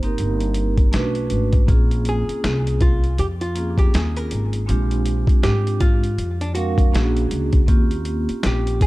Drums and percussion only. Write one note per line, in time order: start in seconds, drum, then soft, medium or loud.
0.03 closed hi-hat soft
0.18 closed hi-hat medium
0.40 closed hi-hat soft
0.54 closed hi-hat medium
0.78 kick medium
0.78 closed hi-hat soft
0.93 snare medium
0.93 closed hi-hat medium
1.15 closed hi-hat soft
1.30 closed hi-hat medium
1.53 kick medium
1.53 closed hi-hat soft
1.68 kick loud
1.68 closed hi-hat medium
1.91 closed hi-hat medium
2.05 closed hi-hat medium
2.29 closed hi-hat soft
2.44 snare loud
2.44 closed hi-hat medium
2.67 closed hi-hat medium
2.81 kick medium
2.81 closed hi-hat medium
3.04 closed hi-hat soft
3.18 closed hi-hat medium
3.41 closed hi-hat soft
3.56 closed hi-hat medium
3.78 kick medium
3.78 closed hi-hat soft
3.94 snare loud
3.94 closed hi-hat medium
4.17 closed hi-hat soft
4.31 closed hi-hat medium
4.53 closed hi-hat soft
4.69 closed hi-hat medium
4.91 closed hi-hat soft
5.06 closed hi-hat medium
5.27 kick medium
5.27 closed hi-hat medium
5.43 snare loud
5.43 closed hi-hat medium
5.67 closed hi-hat medium
5.80 kick medium
5.80 closed hi-hat medium
6.04 closed hi-hat soft
6.18 closed hi-hat medium
6.41 closed hi-hat soft
6.55 closed hi-hat medium
6.78 kick medium
6.78 closed hi-hat medium
6.95 snare loud
6.95 closed hi-hat medium
7.17 closed hi-hat soft
7.31 closed hi-hat medium
7.53 kick medium
7.53 closed hi-hat soft
7.68 kick loud
7.68 closed hi-hat medium
7.91 closed hi-hat medium
8.05 closed hi-hat medium
8.29 closed hi-hat soft
8.43 snare loud
8.43 closed hi-hat medium
8.67 closed hi-hat medium
8.81 kick medium
8.81 closed hi-hat medium